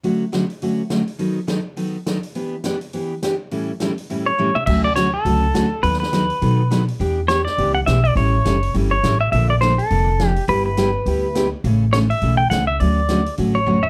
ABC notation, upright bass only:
X:1
M:4/4
L:1/8
Q:"Swing" 1/4=207
K:D
V:1 name="Upright bass" clef=bass
z8 | z8 | z8 | z8 |
D,,4 C,,2 D,,2 | ^D,,4 B,,4 | E,,4 C,,2 B,,,2 | A,,,2 F,,,2 G,,,2 A,,,2 |
_B,,,4 =F,,,4 | G,,,4 D,,4 | A,,,4 B,,,2 C,,2 | D,,4 A,,,4 |]